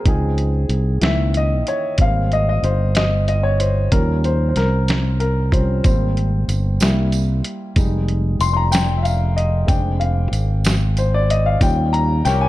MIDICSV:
0, 0, Header, 1, 5, 480
1, 0, Start_track
1, 0, Key_signature, -4, "major"
1, 0, Tempo, 641711
1, 45, Time_signature, 6, 3, 24, 8
1, 9340, End_track
2, 0, Start_track
2, 0, Title_t, "Horn section"
2, 0, Program_c, 0, 61
2, 9179, Note_on_c, 0, 67, 75
2, 9181, Note_on_c, 0, 73, 102
2, 9183, Note_on_c, 0, 70, 74
2, 9340, Note_off_c, 0, 67, 0
2, 9340, Note_off_c, 0, 70, 0
2, 9340, Note_off_c, 0, 73, 0
2, 9340, End_track
3, 0, Start_track
3, 0, Title_t, "Upright piano"
3, 0, Program_c, 1, 0
3, 0, Control_c, 1, 64, 127
3, 40, Note_on_c, 1, 53, 49
3, 46, Note_on_c, 1, 60, 44
3, 54, Note_on_c, 1, 63, 51
3, 55, Control_c, 1, 64, 0
3, 62, Note_on_c, 1, 68, 63
3, 198, Control_c, 1, 64, 127
3, 362, Note_off_c, 1, 53, 0
3, 365, Note_off_c, 1, 60, 0
3, 369, Note_off_c, 1, 63, 0
3, 504, Note_off_c, 1, 68, 0
3, 756, Note_on_c, 1, 52, 52
3, 758, Note_on_c, 1, 58, 44
3, 762, Note_on_c, 1, 51, 57
3, 774, Control_c, 1, 64, 0
3, 780, Note_on_c, 1, 76, 90
3, 912, Control_c, 1, 64, 127
3, 1020, Note_off_c, 1, 76, 0
3, 1026, Note_on_c, 1, 75, 82
3, 1259, Note_on_c, 1, 73, 82
3, 1263, Note_off_c, 1, 75, 0
3, 1451, Note_off_c, 1, 52, 0
3, 1453, Note_off_c, 1, 58, 0
3, 1455, Note_off_c, 1, 51, 0
3, 1487, Note_on_c, 1, 55, 46
3, 1492, Note_on_c, 1, 58, 46
3, 1494, Control_c, 1, 64, 0
3, 1500, Note_off_c, 1, 73, 0
3, 1500, Note_on_c, 1, 60, 56
3, 1506, Note_on_c, 1, 77, 93
3, 1638, Control_c, 1, 64, 127
3, 1720, Note_off_c, 1, 77, 0
3, 1744, Note_on_c, 1, 75, 89
3, 1806, Note_off_c, 1, 55, 0
3, 1809, Note_off_c, 1, 58, 0
3, 1813, Note_off_c, 1, 60, 0
3, 1852, Note_off_c, 1, 75, 0
3, 1863, Note_on_c, 1, 75, 87
3, 1967, Note_off_c, 1, 75, 0
3, 1977, Note_on_c, 1, 72, 82
3, 2196, Note_off_c, 1, 72, 0
3, 2218, Note_on_c, 1, 75, 88
3, 2447, Note_off_c, 1, 75, 0
3, 2458, Note_on_c, 1, 75, 84
3, 2569, Note_on_c, 1, 73, 80
3, 2576, Note_off_c, 1, 75, 0
3, 2680, Note_off_c, 1, 73, 0
3, 2690, Note_on_c, 1, 72, 72
3, 2912, Note_off_c, 1, 72, 0
3, 2925, Note_on_c, 1, 53, 51
3, 2930, Note_on_c, 1, 55, 44
3, 2931, Note_on_c, 1, 70, 75
3, 2933, Note_on_c, 1, 61, 54
3, 2936, Control_c, 1, 64, 0
3, 3058, Control_c, 1, 64, 127
3, 3177, Note_off_c, 1, 70, 0
3, 3178, Note_on_c, 1, 72, 79
3, 3346, Note_off_c, 1, 72, 0
3, 3357, Note_on_c, 1, 72, 62
3, 3409, Note_off_c, 1, 72, 0
3, 3418, Note_on_c, 1, 70, 80
3, 3878, Note_off_c, 1, 70, 0
3, 3889, Note_on_c, 1, 70, 72
3, 4117, Note_off_c, 1, 53, 0
3, 4117, Note_off_c, 1, 55, 0
3, 4124, Note_off_c, 1, 61, 0
3, 4128, Note_on_c, 1, 53, 43
3, 4129, Note_on_c, 1, 55, 39
3, 4133, Note_on_c, 1, 72, 70
3, 4135, Note_on_c, 1, 61, 43
3, 4136, Note_off_c, 1, 70, 0
3, 4344, Note_off_c, 1, 53, 0
3, 4344, Note_off_c, 1, 55, 0
3, 4348, Note_off_c, 1, 61, 0
3, 4363, Note_off_c, 1, 72, 0
3, 4367, Note_on_c, 1, 55, 51
3, 4371, Note_on_c, 1, 58, 47
3, 4374, Note_on_c, 1, 60, 57
3, 4374, Note_on_c, 1, 72, 73
3, 4377, Control_c, 1, 64, 0
3, 4524, Control_c, 1, 64, 127
3, 5058, Note_off_c, 1, 55, 0
3, 5060, Note_off_c, 1, 58, 0
3, 5061, Note_off_c, 1, 60, 0
3, 5093, Note_on_c, 1, 55, 52
3, 5096, Note_on_c, 1, 58, 47
3, 5097, Control_c, 1, 64, 0
3, 5101, Note_on_c, 1, 64, 57
3, 5242, Control_c, 1, 64, 127
3, 5541, Note_off_c, 1, 72, 0
3, 5781, Note_off_c, 1, 55, 0
3, 5782, Note_off_c, 1, 58, 0
3, 5784, Note_off_c, 1, 64, 0
3, 5804, Note_on_c, 1, 55, 48
3, 5809, Note_on_c, 1, 56, 46
3, 5815, Note_on_c, 1, 63, 53
3, 5819, Control_c, 1, 64, 0
3, 5945, Control_c, 1, 64, 127
3, 6289, Note_on_c, 1, 84, 89
3, 6372, Note_off_c, 1, 84, 0
3, 6383, Note_on_c, 1, 84, 70
3, 6407, Note_on_c, 1, 82, 87
3, 6410, Note_off_c, 1, 84, 0
3, 6519, Note_off_c, 1, 82, 0
3, 6521, Note_on_c, 1, 79, 95
3, 6699, Note_off_c, 1, 79, 0
3, 6715, Note_on_c, 1, 76, 62
3, 6756, Note_on_c, 1, 77, 82
3, 6767, Note_off_c, 1, 76, 0
3, 7005, Note_on_c, 1, 75, 69
3, 7009, Note_off_c, 1, 77, 0
3, 7215, Note_off_c, 1, 55, 0
3, 7217, Note_off_c, 1, 56, 0
3, 7220, Note_off_c, 1, 63, 0
3, 7231, Note_on_c, 1, 56, 51
3, 7236, Note_on_c, 1, 60, 48
3, 7241, Note_on_c, 1, 79, 84
3, 7243, Note_on_c, 1, 62, 57
3, 7253, Note_off_c, 1, 75, 0
3, 7256, Control_c, 1, 64, 0
3, 7383, Control_c, 1, 64, 127
3, 7478, Note_on_c, 1, 77, 74
3, 7491, Note_off_c, 1, 79, 0
3, 7557, Note_off_c, 1, 56, 0
3, 7560, Note_off_c, 1, 60, 0
3, 7564, Note_off_c, 1, 62, 0
3, 7931, Note_off_c, 1, 77, 0
3, 8217, Note_on_c, 1, 72, 78
3, 8323, Note_off_c, 1, 72, 0
3, 8336, Note_on_c, 1, 74, 83
3, 8454, Note_off_c, 1, 74, 0
3, 8457, Note_on_c, 1, 75, 80
3, 8563, Note_off_c, 1, 75, 0
3, 8572, Note_on_c, 1, 77, 84
3, 8688, Note_on_c, 1, 55, 52
3, 8690, Note_on_c, 1, 61, 49
3, 8691, Note_off_c, 1, 77, 0
3, 8691, Note_on_c, 1, 65, 60
3, 8693, Control_c, 1, 64, 0
3, 8697, Note_on_c, 1, 79, 97
3, 8841, Control_c, 1, 64, 127
3, 8914, Note_off_c, 1, 79, 0
3, 8922, Note_on_c, 1, 82, 99
3, 9005, Note_off_c, 1, 55, 0
3, 9006, Note_off_c, 1, 61, 0
3, 9006, Note_off_c, 1, 65, 0
3, 9145, Note_off_c, 1, 82, 0
3, 9162, Note_on_c, 1, 79, 99
3, 9199, Note_off_c, 1, 79, 0
3, 9284, Note_on_c, 1, 80, 92
3, 9340, Note_off_c, 1, 80, 0
3, 9340, End_track
4, 0, Start_track
4, 0, Title_t, "Fingered electric bass"
4, 0, Program_c, 2, 33
4, 42, Note_on_c, 2, 37, 88
4, 494, Note_off_c, 2, 37, 0
4, 516, Note_on_c, 2, 36, 81
4, 741, Note_off_c, 2, 36, 0
4, 758, Note_on_c, 2, 37, 80
4, 1213, Note_off_c, 2, 37, 0
4, 1484, Note_on_c, 2, 32, 85
4, 1936, Note_off_c, 2, 32, 0
4, 1965, Note_on_c, 2, 31, 88
4, 2897, Note_off_c, 2, 31, 0
4, 2933, Note_on_c, 2, 39, 99
4, 3381, Note_off_c, 2, 39, 0
4, 3409, Note_on_c, 2, 36, 77
4, 4339, Note_off_c, 2, 36, 0
4, 4372, Note_on_c, 2, 32, 92
4, 4820, Note_off_c, 2, 32, 0
4, 4848, Note_on_c, 2, 31, 82
4, 5069, Note_off_c, 2, 31, 0
4, 5091, Note_on_c, 2, 36, 78
4, 5540, Note_off_c, 2, 36, 0
4, 5805, Note_on_c, 2, 29, 94
4, 6256, Note_off_c, 2, 29, 0
4, 6278, Note_on_c, 2, 29, 82
4, 7212, Note_off_c, 2, 29, 0
4, 7240, Note_on_c, 2, 29, 102
4, 7693, Note_off_c, 2, 29, 0
4, 7715, Note_on_c, 2, 32, 85
4, 8649, Note_off_c, 2, 32, 0
4, 8684, Note_on_c, 2, 39, 108
4, 9133, Note_off_c, 2, 39, 0
4, 9163, Note_on_c, 2, 36, 93
4, 9340, Note_off_c, 2, 36, 0
4, 9340, End_track
5, 0, Start_track
5, 0, Title_t, "Drums"
5, 41, Note_on_c, 9, 36, 103
5, 41, Note_on_c, 9, 42, 81
5, 116, Note_off_c, 9, 36, 0
5, 116, Note_off_c, 9, 42, 0
5, 283, Note_on_c, 9, 42, 40
5, 358, Note_off_c, 9, 42, 0
5, 520, Note_on_c, 9, 42, 56
5, 595, Note_off_c, 9, 42, 0
5, 759, Note_on_c, 9, 42, 80
5, 772, Note_on_c, 9, 38, 100
5, 834, Note_off_c, 9, 42, 0
5, 847, Note_off_c, 9, 38, 0
5, 1004, Note_on_c, 9, 42, 52
5, 1079, Note_off_c, 9, 42, 0
5, 1247, Note_on_c, 9, 42, 71
5, 1322, Note_off_c, 9, 42, 0
5, 1480, Note_on_c, 9, 42, 87
5, 1485, Note_on_c, 9, 36, 100
5, 1554, Note_off_c, 9, 42, 0
5, 1559, Note_off_c, 9, 36, 0
5, 1733, Note_on_c, 9, 42, 38
5, 1808, Note_off_c, 9, 42, 0
5, 1972, Note_on_c, 9, 42, 58
5, 2047, Note_off_c, 9, 42, 0
5, 2206, Note_on_c, 9, 42, 78
5, 2219, Note_on_c, 9, 38, 99
5, 2281, Note_off_c, 9, 42, 0
5, 2294, Note_off_c, 9, 38, 0
5, 2454, Note_on_c, 9, 42, 51
5, 2529, Note_off_c, 9, 42, 0
5, 2693, Note_on_c, 9, 42, 69
5, 2768, Note_off_c, 9, 42, 0
5, 2931, Note_on_c, 9, 42, 89
5, 2933, Note_on_c, 9, 36, 100
5, 3006, Note_off_c, 9, 42, 0
5, 3007, Note_off_c, 9, 36, 0
5, 3174, Note_on_c, 9, 42, 43
5, 3249, Note_off_c, 9, 42, 0
5, 3409, Note_on_c, 9, 42, 59
5, 3423, Note_on_c, 9, 38, 30
5, 3484, Note_off_c, 9, 42, 0
5, 3498, Note_off_c, 9, 38, 0
5, 3653, Note_on_c, 9, 42, 83
5, 3666, Note_on_c, 9, 38, 91
5, 3728, Note_off_c, 9, 42, 0
5, 3741, Note_off_c, 9, 38, 0
5, 3892, Note_on_c, 9, 42, 52
5, 3967, Note_off_c, 9, 42, 0
5, 4130, Note_on_c, 9, 36, 82
5, 4141, Note_on_c, 9, 42, 69
5, 4205, Note_off_c, 9, 36, 0
5, 4215, Note_off_c, 9, 42, 0
5, 4370, Note_on_c, 9, 42, 91
5, 4373, Note_on_c, 9, 36, 118
5, 4379, Note_on_c, 9, 54, 48
5, 4445, Note_off_c, 9, 42, 0
5, 4448, Note_off_c, 9, 36, 0
5, 4454, Note_off_c, 9, 54, 0
5, 4616, Note_on_c, 9, 42, 43
5, 4691, Note_off_c, 9, 42, 0
5, 4852, Note_on_c, 9, 54, 54
5, 4854, Note_on_c, 9, 42, 58
5, 4927, Note_off_c, 9, 54, 0
5, 4929, Note_off_c, 9, 42, 0
5, 5088, Note_on_c, 9, 54, 91
5, 5092, Note_on_c, 9, 42, 81
5, 5105, Note_on_c, 9, 38, 104
5, 5163, Note_off_c, 9, 54, 0
5, 5167, Note_off_c, 9, 42, 0
5, 5180, Note_off_c, 9, 38, 0
5, 5329, Note_on_c, 9, 42, 48
5, 5331, Note_on_c, 9, 54, 54
5, 5403, Note_off_c, 9, 42, 0
5, 5406, Note_off_c, 9, 54, 0
5, 5569, Note_on_c, 9, 42, 74
5, 5643, Note_off_c, 9, 42, 0
5, 5804, Note_on_c, 9, 42, 90
5, 5807, Note_on_c, 9, 36, 113
5, 5816, Note_on_c, 9, 54, 50
5, 5879, Note_off_c, 9, 42, 0
5, 5882, Note_off_c, 9, 36, 0
5, 5891, Note_off_c, 9, 54, 0
5, 6047, Note_on_c, 9, 42, 41
5, 6122, Note_off_c, 9, 42, 0
5, 6286, Note_on_c, 9, 54, 59
5, 6287, Note_on_c, 9, 42, 64
5, 6361, Note_off_c, 9, 54, 0
5, 6362, Note_off_c, 9, 42, 0
5, 6524, Note_on_c, 9, 54, 89
5, 6530, Note_on_c, 9, 42, 76
5, 6543, Note_on_c, 9, 38, 103
5, 6598, Note_off_c, 9, 54, 0
5, 6604, Note_off_c, 9, 42, 0
5, 6617, Note_off_c, 9, 38, 0
5, 6771, Note_on_c, 9, 54, 53
5, 6772, Note_on_c, 9, 42, 54
5, 6846, Note_off_c, 9, 54, 0
5, 6847, Note_off_c, 9, 42, 0
5, 7014, Note_on_c, 9, 42, 69
5, 7089, Note_off_c, 9, 42, 0
5, 7244, Note_on_c, 9, 36, 109
5, 7244, Note_on_c, 9, 42, 96
5, 7248, Note_on_c, 9, 54, 50
5, 7318, Note_off_c, 9, 36, 0
5, 7319, Note_off_c, 9, 42, 0
5, 7323, Note_off_c, 9, 54, 0
5, 7487, Note_on_c, 9, 42, 42
5, 7562, Note_off_c, 9, 42, 0
5, 7726, Note_on_c, 9, 42, 61
5, 7726, Note_on_c, 9, 54, 55
5, 7800, Note_off_c, 9, 42, 0
5, 7801, Note_off_c, 9, 54, 0
5, 7962, Note_on_c, 9, 54, 85
5, 7964, Note_on_c, 9, 42, 80
5, 7977, Note_on_c, 9, 38, 101
5, 8037, Note_off_c, 9, 54, 0
5, 8039, Note_off_c, 9, 42, 0
5, 8052, Note_off_c, 9, 38, 0
5, 8205, Note_on_c, 9, 42, 54
5, 8207, Note_on_c, 9, 54, 51
5, 8279, Note_off_c, 9, 42, 0
5, 8282, Note_off_c, 9, 54, 0
5, 8455, Note_on_c, 9, 42, 72
5, 8530, Note_off_c, 9, 42, 0
5, 8683, Note_on_c, 9, 36, 120
5, 8685, Note_on_c, 9, 42, 97
5, 8690, Note_on_c, 9, 54, 50
5, 8758, Note_off_c, 9, 36, 0
5, 8760, Note_off_c, 9, 42, 0
5, 8765, Note_off_c, 9, 54, 0
5, 8931, Note_on_c, 9, 42, 44
5, 9005, Note_off_c, 9, 42, 0
5, 9164, Note_on_c, 9, 54, 60
5, 9166, Note_on_c, 9, 42, 65
5, 9179, Note_on_c, 9, 38, 33
5, 9239, Note_off_c, 9, 54, 0
5, 9241, Note_off_c, 9, 42, 0
5, 9254, Note_off_c, 9, 38, 0
5, 9340, End_track
0, 0, End_of_file